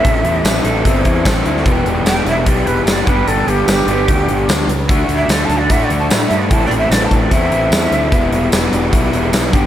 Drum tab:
HH |x-x-x-x-x-x-x-x-|x-x-x-x-x-x-x-x-|x-x-x-x-x-x-x-x-|x-x-x-x-x-x-x-x-|
TB |----x-------x---|----x-------x---|----x-------x---|----x-------x---|
SD |----o-------o--o|----o-------o---|----o-------o---|----o-------o---|
BD |o-------o-o-o---|o-------o-----o-|--------o-------|o-------o-------|

HH |x-x-x-x-x-x-x-x-|x-x-x-x-x-x-x-x-|
TB |----x-------x---|----x-------x---|
SD |----o-------o---|----o-------o---|
BD |o-----o-o-------|o-------o-----o-|